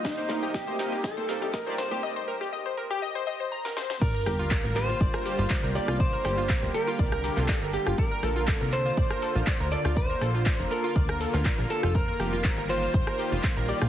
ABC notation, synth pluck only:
X:1
M:4/4
L:1/16
Q:1/4=121
K:Gm
V:1 name="Synth pluck"
e c B G e c B G e c B G e c B G | e c B G e c B G e c e c b B c c | d B G F d B G F d B G F d B G F | d B G F d B G F d B G F d B G F |
d B A F d B A F d B A F d B A F | d B A F d B A F d B A F d B A F | c B G F c B F F c B G F c B G F |]